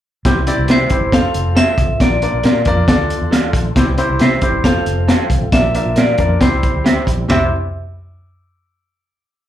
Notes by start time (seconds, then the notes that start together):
0.25 C2 E3 G3 C4 E4 G4 C5, kick, snare, closed hi-hat
0.47 C4 E4 G4 D5, closed hi-hat
0.58 C2
0.68 C3 G4 C5 E5, snare, closed hi-hat
0.90 G1 C4 E4 G4 C5, kick, closed hi-hat
1.12 F1 A3 C4 F4 A4 C5 F5, kick, snare, closed hi-hat
1.24 muted fingered electric bass stroke
1.34 F1, closed hi-hat
1.55 A4 C5 E5 F5, snare, closed hi-hat
1.78 C2, kick, closed hi-hat
1.89 A1
2.00 A#1 A#3 D4 F4 A#4 D5, kick, snare, closed hi-hat
2.22 D4 F4 A#4 D5, closed hi-hat
2.34 A#1
2.43 A#2 A#4 D5 F5, snare, closed hi-hat
2.65 F2 D4 F4 A#4 D5, kick, closed hi-hat
2.88 D2 A3 D4 F4 A4 D5, kick, snare, closed hi-hat
3.10 closed hi-hat
3.21 E2
3.31 A4 D5 F5, snare, closed hi-hat
3.53 A#1, kick, closed hi-hat
3.75 C2 E3 G3 C4 E4 G4 C5, kick, snare, closed hi-hat
3.98 C4 E4 G4 C5, closed hi-hat
4.10 C2
4.19 C3 G4 C5 E5, snare, closed hi-hat
4.41 G1 C4 E4 G4 C5, kick, closed hi-hat
4.64 F1 F3 A3 C4 F4 A4 C5 F5, kick, snare, closed hi-hat
4.75 muted fingered electric bass stroke
4.86 F1, closed hi-hat
5.08 A4 C5 F5, snare, closed hi-hat
5.30 C2, kick, closed hi-hat
5.42 A1
5.52 A#1 A#3 D4 F4 A#4 D5 E5, kick, snare, closed hi-hat
5.75 D4 F4 A#4 E5, closed hi-hat
5.86 A#1
5.96 A#2 A#4 D5 F5, snare, closed hi-hat
6.18 F2 D4 F4 A#4 D5, kick, closed hi-hat
6.41 C2 G3 C4 E4 G4 C5, kick, snare, closed hi-hat
6.63 kick, closed hi-hat
6.74 D2
6.84 G4 C5 E5, snare, closed hi-hat
7.07 A#1, kick, closed hi-hat
7.29 C2 G3 C4 E4 G4 C5 E5, snare, floor tom, ride bell